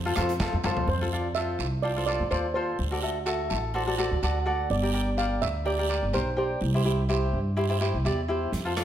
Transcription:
Already playing: F2
0.05 F4 A4 C5
0.16 F2 F4 A4 C5, cross-stick, closed hi-hat, short guiro
0.29 closed hi-hat
0.40 F4 A4 C5, kick, snare, short guiro
0.53 F2
0.64 F2 F4 A4 C5, mid tom, short guiro
0.77 floor tom
0.87 F2 C5, long guiro
1.01 F4 A4 C5
1.12 F4 A4 D5
1.35 F4 A4 C5 E5, short guiro
1.59 C2, short guiro
1.82 F4 A4 C5 D5, long guiro
1.96 F4 A4 C5
2.06 F4 A4 C5 D5, short guiro
2.20 F2
2.30 D#2 F4 A4 C5 D5, short guiro
2.54 F4 A4 C5
2.79 D2, long guiro
2.91 F#4 A4 D5
3.02 F#4 A4 E5
3.26 F#4 A4 E5, short guiro
3.50 A1 A4, short guiro
3.74 F#4 A4 C5 D5, long guiro
3.87 F#4 A4 D5
3.98 F#4 A4 D5, short guiro
4.11 D2
4.22 D2 F#4 A4 D5 F#5, short guiro
4.45 F#4 A4 D5 F#5
4.70 G1 D5, long guiro
4.83 G4 A#4 D5
4.93 G4 A#4 D5
5.17 G4 A#4 D5 F5, short guiro
5.42 D2 E5, short guiro
5.65 G4 A#4 D5, long guiro
5.78 G4 A#4 D5
5.89 G4 A#4 D5, short guiro
6.02 G1
6.13 B1 G4 A#4 C5, short guiro
6.37 G4 A#4 C5 D5
6.61 C2, long guiro
6.74 E4 G4 C5
6.85 E4 G4 C5
7.09 E4 G4 C5, short guiro
7.33 G2
7.57 E4 G4 C5, long guiro
7.69 E4 G4 C5
7.81 E4 G4 C5, short guiro
7.94 C2
8.05 E2 E4 G4 D5, short guiro
8.28 E4 G4 C5
8.52 F2, closed hi-hat, long guiro
8.65 F4 A4 C5
8.76 F4 A4 D5, cross-stick, closed hi-hat

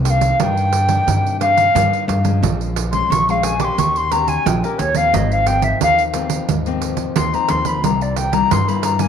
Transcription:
Already playing: C2 C3
0.05 D#3 A#3 D4 G5, pandeiro
0.10 F5
0.21 pandeiro
0.39 G2 D#3 A#3 D4 G5, pandeiro
0.57 pandeiro
0.73 pandeiro
0.88 D#3 A#3 D4, pandeiro
1.07 G2 C3, pandeiro
1.26 pandeiro
1.40 D#3 A#3 D4 F5, pandeiro
1.57 pandeiro
1.74 G2 D#3 A#3 D4, pandeiro
1.93 pandeiro
2.08 G2, pandeiro
2.23 F3 G#3 C#4, pandeiro
2.42 A#1 A#2, pandeiro
2.61 pandeiro
2.76 pandeiro
2.92 F3 G#3 C#4 C6, pandeiro
3.10 A#1 F2 C#6, pandeiro
3.28 F3 G#3 C#4 F5, pandeiro
3.43 G#5, pandeiro
3.59 A#3 C#4 G4 D6, pandeiro
3.64 C6
3.78 D#2 D#3 C#6, pandeiro
3.96 C6, pandeiro
4.11 A#3 C#4 G4 A#5, pandeiro
4.28 G#5, pandeiro
4.46 A#1 A#2 G5, pandeiro
4.63 A#3 C#4 G4 A#4, pandeiro
4.78 D#2 C#5, pandeiro
4.95 F3 A#3 C4 F5, pandeiro
5.13 G#1 G#2 D#5, pandeiro
5.32 F5, pandeiro
5.46 F3 A#3 C4 G5, pandeiro
5.62 E5, pandeiro
5.80 D#2 D#3 F5, pandeiro
5.99 pandeiro
6.14 F3 A#3 C4, pandeiro
6.30 pandeiro
6.48 D#2 G#2, pandeiro
6.66 F3 A#3 C4, pandeiro
6.82 pandeiro
6.97 pandeiro
7.16 D#2 D#3 C6, pandeiro
7.33 F3 A#3 C4 A#5, pandeiro
7.48 D#2 C6, pandeiro
7.65 B5, pandeiro
7.83 C2 C3 G3 A#3 E4 A#5, pandeiro
8.01 D5, pandeiro
8.16 G5, pandeiro
8.32 G3 A#3 E4 A#5, pandeiro
8.50 G2 C6, pandeiro
8.67 G3 A#3 E4 B5, pandeiro
8.83 A#5, pandeiro
8.99 G3 A#3 E4 G#5, pandeiro

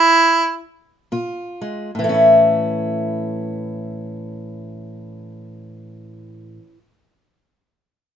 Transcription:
Already playing: E4
1.12 A#2 F4
1.61 G#3
1.95 A2
1.99 E3
2.04 A3
2.09 C#4
2.14 E4

